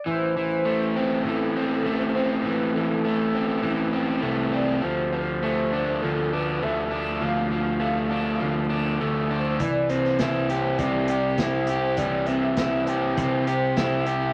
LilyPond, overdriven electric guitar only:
\new Staff \with { instrumentName = "Overdriven electric guitar" } { \time 4/4 \key a \minor \tempo 4 = 101 e8 e8 a8 c'8 e8 c'8 a8 c'8 | e8 e8 a8 c'8 e8 c'8 a8 c'8 | f8 f8 a8 d'8 f8 d'8 a8 d'8 | f8 f8 a8 d'8 f8 d'8 a8 d'8 |
e8 c'8 e'8 g'8 c'8 g'8 e'8 g'8 | e8 c'8 e'8 g'8 c'8 g'8 e'8 g'8 | }